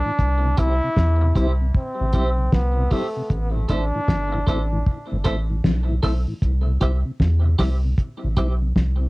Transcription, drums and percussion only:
0.19 kick medium
0.19 hi-hat pedal medium
0.57 kick medium
0.57 closed hi-hat medium
0.97 kick loud
0.97 snare loud
1.36 kick medium
1.36 closed hi-hat medium
1.75 kick loud
2.13 kick medium
2.13 closed hi-hat medium
2.53 kick loud
2.53 snare loud
2.91 kick medium
2.91 open hi-hat medium
3.30 kick loud
3.30 hi-hat pedal medium
3.69 kick medium
3.69 closed hi-hat medium
4.08 kick loud
4.08 snare loud
4.47 kick medium
4.47 closed hi-hat medium
4.86 kick loud
5.24 kick medium
5.24 closed hi-hat medium
5.64 kick loud
5.64 snare loud
6.03 kick medium
6.03 open hi-hat medium
6.42 kick loud
6.42 hi-hat pedal medium
6.81 kick medium
6.81 closed hi-hat medium
7.20 kick loud
7.20 snare medium
7.59 kick medium
7.59 snare medium
7.59 open hi-hat medium
7.98 kick loud
7.98 hi-hat pedal medium
8.37 kick medium
8.37 closed hi-hat medium
8.76 kick loud
8.76 snare loud

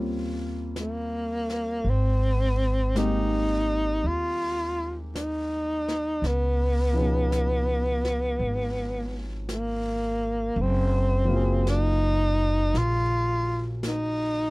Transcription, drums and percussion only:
0.76 brush sweep soft
0.76 snare soft
0.76 hi-hat pedal soft
1.50 snare soft
1.86 brush sweep soft
2.96 brush sweep soft
2.96 snare soft
2.96 hi-hat pedal soft
4.05 brush sweep soft
5.16 brush sweep soft
5.16 snare soft
5.16 hi-hat pedal medium
5.88 snare soft
6.24 brush sweep soft
6.24 snare soft
7.32 brush sweep soft
7.32 snare soft
7.32 hi-hat pedal soft
8.05 snare soft
8.41 brush sweep soft
9.49 brush sweep soft
9.49 snare soft
9.49 hi-hat pedal soft
10.58 brush sweep soft
11.67 brush sweep soft
11.67 snare soft
11.67 hi-hat pedal soft
12.75 brush sweep soft
12.75 snare soft
13.83 brush sweep soft
13.83 snare soft
13.83 hi-hat pedal medium

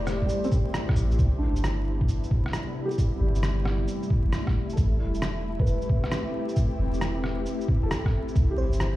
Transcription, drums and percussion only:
0.07 cross-stick medium
0.07 cabasa medium
0.22 kick medium
0.29 shaker medium
0.44 shaker soft
0.52 kick loud
0.52 cabasa medium
0.74 cross-stick loud
0.74 shaker medium
0.89 kick loud
0.89 cross-stick medium
0.96 cabasa medium
1.11 shaker soft
1.19 kick loud
1.19 shaker medium
1.56 shaker medium
1.64 cross-stick loud
1.64 shaker medium
2.01 kick loud
2.08 shaker medium
2.24 shaker soft
2.31 kick loud
2.46 cross-stick medium
2.53 cross-stick medium
2.53 shaker medium
2.91 shaker soft
2.98 kick loud
2.98 shaker medium
3.35 shaker medium
3.43 cross-stick loud
3.43 shaker medium
3.65 cross-stick medium
3.88 shaker medium
4.03 shaker soft
4.10 kick loud
4.33 cross-stick loud
4.33 shaker medium
4.47 kick loud
4.47 cross-stick soft
4.69 shaker soft
4.77 kick loud
4.77 shaker medium
5.14 shaker medium
5.22 cross-stick loud
5.22 shaker medium
5.59 kick loud
5.67 shaker medium
5.82 shaker soft
5.89 kick loud
6.04 cross-stick medium
6.12 cross-stick loud
6.12 shaker medium
6.49 shaker soft
6.56 kick loud
6.56 shaker medium
6.94 shaker medium
7.01 cross-stick loud
7.01 shaker medium
7.24 cross-stick medium
7.46 shaker medium
7.61 shaker soft
7.68 kick loud
7.91 cross-stick loud
7.91 shaker medium
8.06 kick loud
8.06 cross-stick soft
8.28 shaker soft
8.36 kick loud
8.36 shaker soft
8.73 shaker medium
8.80 cross-stick loud
8.80 shaker medium

